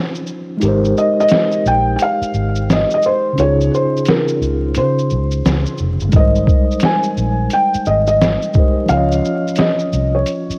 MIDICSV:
0, 0, Header, 1, 6, 480
1, 0, Start_track
1, 0, Key_signature, -4, "major"
1, 0, Tempo, 689655
1, 429, Time_signature, 4, 2, 24, 8
1, 7367, End_track
2, 0, Start_track
2, 0, Title_t, "Felt piano"
2, 0, Program_c, 0, 0
2, 683, Note_on_c, 0, 75, 90
2, 827, Note_off_c, 0, 75, 0
2, 837, Note_on_c, 0, 75, 110
2, 1135, Note_off_c, 0, 75, 0
2, 1166, Note_on_c, 0, 79, 103
2, 1348, Note_off_c, 0, 79, 0
2, 1366, Note_on_c, 0, 79, 72
2, 1395, Note_off_c, 0, 79, 0
2, 1410, Note_on_c, 0, 77, 102
2, 1893, Note_off_c, 0, 77, 0
2, 1897, Note_on_c, 0, 75, 92
2, 2036, Note_off_c, 0, 75, 0
2, 2046, Note_on_c, 0, 75, 94
2, 2124, Note_off_c, 0, 75, 0
2, 2129, Note_on_c, 0, 72, 89
2, 2364, Note_on_c, 0, 73, 91
2, 2366, Note_off_c, 0, 72, 0
2, 2580, Note_off_c, 0, 73, 0
2, 2607, Note_on_c, 0, 72, 85
2, 2822, Note_off_c, 0, 72, 0
2, 2846, Note_on_c, 0, 70, 79
2, 3289, Note_off_c, 0, 70, 0
2, 3324, Note_on_c, 0, 72, 74
2, 4008, Note_off_c, 0, 72, 0
2, 4288, Note_on_c, 0, 75, 90
2, 4731, Note_off_c, 0, 75, 0
2, 4765, Note_on_c, 0, 80, 98
2, 5243, Note_on_c, 0, 79, 99
2, 5251, Note_off_c, 0, 80, 0
2, 5477, Note_on_c, 0, 75, 89
2, 5483, Note_off_c, 0, 79, 0
2, 5610, Note_off_c, 0, 75, 0
2, 5620, Note_on_c, 0, 75, 92
2, 6189, Note_on_c, 0, 77, 95
2, 6206, Note_off_c, 0, 75, 0
2, 6641, Note_off_c, 0, 77, 0
2, 6669, Note_on_c, 0, 75, 82
2, 7062, Note_on_c, 0, 73, 71
2, 7072, Note_off_c, 0, 75, 0
2, 7367, Note_off_c, 0, 73, 0
2, 7367, End_track
3, 0, Start_track
3, 0, Title_t, "Tine electric piano"
3, 0, Program_c, 1, 4
3, 0, Control_c, 1, 64, 127
3, 0, Note_on_c, 1, 53, 66
3, 0, Note_on_c, 1, 61, 60
3, 0, Note_on_c, 1, 63, 62
3, 0, Note_on_c, 1, 65, 57
3, 0, Note_on_c, 1, 72, 73
3, 386, Note_off_c, 1, 53, 0
3, 396, Note_off_c, 1, 61, 0
3, 398, Note_on_c, 1, 56, 77
3, 405, Note_off_c, 1, 63, 0
3, 415, Note_off_c, 1, 65, 0
3, 417, Note_on_c, 1, 63, 75
3, 425, Note_off_c, 1, 72, 0
3, 435, Note_on_c, 1, 67, 74
3, 437, Control_c, 1, 64, 0
3, 453, Note_on_c, 1, 70, 70
3, 474, Note_on_c, 1, 72, 86
3, 553, Control_c, 1, 64, 127
3, 2306, Note_off_c, 1, 56, 0
3, 2315, Note_off_c, 1, 63, 0
3, 2315, Note_on_c, 1, 49, 63
3, 2324, Note_off_c, 1, 67, 0
3, 2333, Note_off_c, 1, 70, 0
3, 2335, Note_on_c, 1, 61, 57
3, 2344, Note_off_c, 1, 72, 0
3, 2353, Note_on_c, 1, 63, 60
3, 2359, Control_c, 1, 64, 0
3, 2373, Note_on_c, 1, 65, 61
3, 2393, Note_on_c, 1, 68, 73
3, 2470, Control_c, 1, 64, 127
3, 4224, Note_off_c, 1, 49, 0
3, 4234, Note_off_c, 1, 61, 0
3, 4238, Note_on_c, 1, 56, 66
3, 4243, Note_off_c, 1, 63, 0
3, 4253, Note_off_c, 1, 65, 0
3, 4260, Note_on_c, 1, 63, 60
3, 4263, Note_off_c, 1, 68, 0
3, 4277, Control_c, 1, 64, 0
3, 4277, Note_on_c, 1, 55, 59
3, 4296, Note_on_c, 1, 70, 59
3, 4315, Note_on_c, 1, 72, 74
3, 4396, Control_c, 1, 64, 127
3, 5906, Note_off_c, 1, 56, 0
3, 5916, Note_off_c, 1, 63, 0
3, 5925, Note_off_c, 1, 55, 0
3, 5935, Note_off_c, 1, 70, 0
3, 5941, Note_on_c, 1, 56, 49
3, 5944, Note_off_c, 1, 72, 0
3, 5953, Note_on_c, 1, 63, 47
3, 5960, Note_on_c, 1, 67, 45
3, 5969, Note_on_c, 1, 70, 44
3, 5980, Note_on_c, 1, 72, 59
3, 6164, Note_on_c, 1, 53, 67
3, 6185, Note_off_c, 1, 56, 0
3, 6185, Note_on_c, 1, 61, 64
3, 6191, Note_off_c, 1, 63, 0
3, 6195, Note_off_c, 1, 67, 0
3, 6198, Control_c, 1, 64, 0
3, 6199, Note_off_c, 1, 70, 0
3, 6203, Note_on_c, 1, 65, 59
3, 6204, Note_off_c, 1, 72, 0
3, 6221, Note_on_c, 1, 73, 65
3, 6241, Note_on_c, 1, 75, 76
3, 6315, Control_c, 1, 64, 127
3, 7367, Note_off_c, 1, 53, 0
3, 7367, Note_off_c, 1, 61, 0
3, 7367, Note_off_c, 1, 65, 0
3, 7367, Note_off_c, 1, 73, 0
3, 7367, Note_off_c, 1, 75, 0
3, 7367, End_track
4, 0, Start_track
4, 0, Title_t, "Fingered electric bass"
4, 0, Program_c, 2, 33
4, 437, Note_on_c, 2, 32, 112
4, 640, Note_off_c, 2, 32, 0
4, 1154, Note_on_c, 2, 34, 95
4, 1359, Note_off_c, 2, 34, 0
4, 1631, Note_on_c, 2, 32, 88
4, 1968, Note_off_c, 2, 32, 0
4, 2358, Note_on_c, 2, 37, 104
4, 2561, Note_off_c, 2, 37, 0
4, 3074, Note_on_c, 2, 37, 82
4, 3318, Note_on_c, 2, 49, 95
4, 3329, Note_off_c, 2, 37, 0
4, 3562, Note_on_c, 2, 37, 81
4, 3572, Note_off_c, 2, 49, 0
4, 3763, Note_off_c, 2, 37, 0
4, 3798, Note_on_c, 2, 37, 88
4, 3925, Note_off_c, 2, 37, 0
4, 4037, Note_on_c, 2, 29, 82
4, 4164, Note_off_c, 2, 29, 0
4, 4188, Note_on_c, 2, 31, 85
4, 4261, Note_off_c, 2, 31, 0
4, 4272, Note_on_c, 2, 32, 101
4, 4478, Note_off_c, 2, 32, 0
4, 4993, Note_on_c, 2, 34, 78
4, 5198, Note_off_c, 2, 34, 0
4, 5479, Note_on_c, 2, 32, 94
4, 5812, Note_off_c, 2, 32, 0
4, 6194, Note_on_c, 2, 37, 103
4, 6398, Note_off_c, 2, 37, 0
4, 6913, Note_on_c, 2, 36, 96
4, 7118, Note_off_c, 2, 36, 0
4, 7367, End_track
5, 0, Start_track
5, 0, Title_t, "Muted fingered electric bass strokes"
5, 1543, Note_on_c, 9, 29, 45
5, 1613, Note_off_c, 9, 29, 0
5, 5393, Note_on_c, 9, 29, 44
5, 5463, Note_off_c, 9, 29, 0
5, 7307, Note_on_c, 9, 29, 45
5, 7367, Note_off_c, 9, 29, 0
5, 7367, End_track
6, 0, Start_track
6, 0, Title_t, "Drums"
6, 103, Note_on_c, 9, 82, 46
6, 173, Note_off_c, 9, 82, 0
6, 185, Note_on_c, 9, 82, 48
6, 255, Note_off_c, 9, 82, 0
6, 428, Note_on_c, 9, 42, 60
6, 428, Note_on_c, 9, 82, 60
6, 497, Note_off_c, 9, 42, 0
6, 497, Note_off_c, 9, 82, 0
6, 589, Note_on_c, 9, 82, 49
6, 659, Note_off_c, 9, 82, 0
6, 678, Note_on_c, 9, 82, 49
6, 748, Note_off_c, 9, 82, 0
6, 837, Note_on_c, 9, 82, 39
6, 894, Note_off_c, 9, 82, 0
6, 894, Note_on_c, 9, 42, 61
6, 894, Note_on_c, 9, 82, 61
6, 916, Note_on_c, 9, 38, 106
6, 964, Note_off_c, 9, 42, 0
6, 964, Note_off_c, 9, 82, 0
6, 985, Note_off_c, 9, 38, 0
6, 1055, Note_on_c, 9, 82, 41
6, 1125, Note_off_c, 9, 82, 0
6, 1155, Note_on_c, 9, 82, 48
6, 1224, Note_off_c, 9, 82, 0
6, 1384, Note_on_c, 9, 42, 64
6, 1384, Note_on_c, 9, 82, 65
6, 1454, Note_off_c, 9, 42, 0
6, 1454, Note_off_c, 9, 82, 0
6, 1549, Note_on_c, 9, 82, 44
6, 1619, Note_off_c, 9, 82, 0
6, 1629, Note_on_c, 9, 82, 41
6, 1699, Note_off_c, 9, 82, 0
6, 1779, Note_on_c, 9, 82, 47
6, 1849, Note_off_c, 9, 82, 0
6, 1880, Note_on_c, 9, 38, 97
6, 1880, Note_on_c, 9, 42, 70
6, 1880, Note_on_c, 9, 82, 72
6, 1950, Note_off_c, 9, 38, 0
6, 1950, Note_off_c, 9, 42, 0
6, 1950, Note_off_c, 9, 82, 0
6, 2023, Note_on_c, 9, 82, 46
6, 2093, Note_off_c, 9, 82, 0
6, 2105, Note_on_c, 9, 82, 50
6, 2175, Note_off_c, 9, 82, 0
6, 2352, Note_on_c, 9, 42, 58
6, 2352, Note_on_c, 9, 82, 59
6, 2421, Note_off_c, 9, 42, 0
6, 2421, Note_off_c, 9, 82, 0
6, 2512, Note_on_c, 9, 82, 46
6, 2581, Note_off_c, 9, 82, 0
6, 2605, Note_on_c, 9, 82, 48
6, 2675, Note_off_c, 9, 82, 0
6, 2763, Note_on_c, 9, 82, 41
6, 2822, Note_off_c, 9, 82, 0
6, 2822, Note_on_c, 9, 42, 63
6, 2822, Note_on_c, 9, 82, 66
6, 2844, Note_on_c, 9, 38, 97
6, 2892, Note_off_c, 9, 42, 0
6, 2892, Note_off_c, 9, 82, 0
6, 2913, Note_off_c, 9, 38, 0
6, 2980, Note_on_c, 9, 82, 43
6, 3049, Note_off_c, 9, 82, 0
6, 3078, Note_on_c, 9, 82, 45
6, 3147, Note_off_c, 9, 82, 0
6, 3302, Note_on_c, 9, 42, 63
6, 3302, Note_on_c, 9, 82, 60
6, 3372, Note_off_c, 9, 42, 0
6, 3372, Note_off_c, 9, 82, 0
6, 3470, Note_on_c, 9, 82, 44
6, 3540, Note_off_c, 9, 82, 0
6, 3549, Note_on_c, 9, 82, 41
6, 3618, Note_off_c, 9, 82, 0
6, 3696, Note_on_c, 9, 82, 42
6, 3765, Note_off_c, 9, 82, 0
6, 3797, Note_on_c, 9, 38, 103
6, 3797, Note_on_c, 9, 42, 72
6, 3797, Note_on_c, 9, 82, 71
6, 3867, Note_off_c, 9, 38, 0
6, 3867, Note_off_c, 9, 42, 0
6, 3867, Note_off_c, 9, 82, 0
6, 3938, Note_on_c, 9, 82, 44
6, 4008, Note_off_c, 9, 82, 0
6, 4020, Note_on_c, 9, 82, 50
6, 4090, Note_off_c, 9, 82, 0
6, 4177, Note_on_c, 9, 82, 47
6, 4246, Note_off_c, 9, 82, 0
6, 4260, Note_on_c, 9, 42, 61
6, 4260, Note_on_c, 9, 82, 59
6, 4269, Note_on_c, 9, 36, 105
6, 4330, Note_off_c, 9, 42, 0
6, 4330, Note_off_c, 9, 82, 0
6, 4338, Note_off_c, 9, 36, 0
6, 4422, Note_on_c, 9, 82, 47
6, 4492, Note_off_c, 9, 82, 0
6, 4504, Note_on_c, 9, 36, 98
6, 4513, Note_on_c, 9, 82, 49
6, 4574, Note_off_c, 9, 36, 0
6, 4583, Note_off_c, 9, 82, 0
6, 4672, Note_on_c, 9, 82, 41
6, 4732, Note_off_c, 9, 82, 0
6, 4732, Note_on_c, 9, 42, 65
6, 4732, Note_on_c, 9, 82, 61
6, 4753, Note_on_c, 9, 38, 101
6, 4801, Note_off_c, 9, 42, 0
6, 4801, Note_off_c, 9, 82, 0
6, 4823, Note_off_c, 9, 38, 0
6, 4893, Note_on_c, 9, 82, 41
6, 4963, Note_off_c, 9, 82, 0
6, 4992, Note_on_c, 9, 82, 47
6, 5062, Note_off_c, 9, 82, 0
6, 5222, Note_on_c, 9, 42, 66
6, 5222, Note_on_c, 9, 82, 65
6, 5291, Note_off_c, 9, 42, 0
6, 5291, Note_off_c, 9, 82, 0
6, 5388, Note_on_c, 9, 82, 44
6, 5458, Note_off_c, 9, 82, 0
6, 5468, Note_on_c, 9, 82, 43
6, 5538, Note_off_c, 9, 82, 0
6, 5617, Note_on_c, 9, 82, 48
6, 5687, Note_off_c, 9, 82, 0
6, 5718, Note_on_c, 9, 42, 65
6, 5718, Note_on_c, 9, 82, 73
6, 5719, Note_on_c, 9, 38, 105
6, 5788, Note_off_c, 9, 38, 0
6, 5788, Note_off_c, 9, 42, 0
6, 5788, Note_off_c, 9, 82, 0
6, 5862, Note_on_c, 9, 82, 47
6, 5931, Note_off_c, 9, 82, 0
6, 5941, Note_on_c, 9, 82, 49
6, 5951, Note_on_c, 9, 36, 82
6, 6010, Note_off_c, 9, 82, 0
6, 6021, Note_off_c, 9, 36, 0
6, 6183, Note_on_c, 9, 42, 59
6, 6183, Note_on_c, 9, 82, 56
6, 6253, Note_off_c, 9, 42, 0
6, 6253, Note_off_c, 9, 82, 0
6, 6345, Note_on_c, 9, 82, 52
6, 6414, Note_off_c, 9, 82, 0
6, 6437, Note_on_c, 9, 82, 47
6, 6507, Note_off_c, 9, 82, 0
6, 6595, Note_on_c, 9, 82, 40
6, 6651, Note_off_c, 9, 82, 0
6, 6651, Note_on_c, 9, 42, 62
6, 6651, Note_on_c, 9, 82, 61
6, 6673, Note_on_c, 9, 38, 96
6, 6721, Note_off_c, 9, 42, 0
6, 6721, Note_off_c, 9, 82, 0
6, 6742, Note_off_c, 9, 38, 0
6, 6815, Note_on_c, 9, 82, 41
6, 6885, Note_off_c, 9, 82, 0
6, 6909, Note_on_c, 9, 82, 48
6, 6979, Note_off_c, 9, 82, 0
6, 7142, Note_on_c, 9, 42, 67
6, 7142, Note_on_c, 9, 82, 65
6, 7211, Note_off_c, 9, 42, 0
6, 7211, Note_off_c, 9, 82, 0
6, 7311, Note_on_c, 9, 82, 44
6, 7367, Note_off_c, 9, 82, 0
6, 7367, End_track
0, 0, End_of_file